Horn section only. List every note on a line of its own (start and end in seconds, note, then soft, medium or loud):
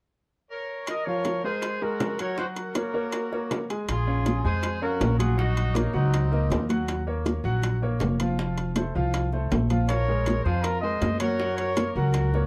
0.50 0.86 A#4 medium
0.50 0.85 C#5 medium
0.89 1.05 A#4 medium
0.89 1.07 D#5 medium
1.05 1.44 A#4 medium
1.05 1.44 C#5 loud
1.44 1.80 G#4 medium
1.44 1.79 C5 medium
1.82 2.20 F#4 medium
1.82 2.20 A#4 medium
2.20 2.38 A#4 medium
2.20 2.37 C#5 medium
2.38 2.47 F#4 medium
2.38 2.47 C5 medium
2.57 3.66 F#4 medium
2.57 3.66 A#4 medium
3.89 4.42 F4 medium
3.89 4.41 G#4 loud
4.45 4.80 G#4 medium
4.45 4.80 C5 medium
4.82 5.18 F#4 medium
4.82 5.17 A#4 loud
5.19 5.37 F4 medium
5.19 5.37 G#4 medium
5.38 5.73 D#4 medium
5.38 5.74 F#4 medium
5.75 5.95 A#3 medium
5.75 5.94 D#4 medium
5.95 6.66 C4 medium
5.95 6.66 D#4 medium
9.89 10.42 A#4 medium
9.89 10.41 C#5 loud
10.43 10.63 G#4 medium
10.43 10.62 C5 medium
10.62 10.83 F4 medium
10.62 10.82 A#4 loud
10.81 11.18 C5 medium
10.81 11.17 D#5 medium
11.19 11.56 A#4 medium
11.19 11.55 C#5 loud
11.56 11.94 A#4 medium
11.56 11.92 C#5 loud
11.96 12.46 F#4 medium
11.96 12.46 A#4 medium